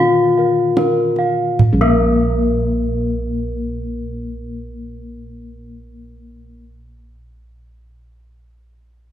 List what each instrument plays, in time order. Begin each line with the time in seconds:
Already playing: kettle gongs A#2, bronze metallophone D#3 F4
0.00 bronze metallophone F5, kettle gongs F5
0.38 kettle gongs A#4, bronze metallophone F5
0.77 bronze metallophone A#4, kettle gongs F5, kendang high
1.16 bronze metallophone F5, kendang slap
1.59 kendang low
1.73 kettle gongs A#1
1.81 bronze metallophone A#3 A#4, kettle gongs A#4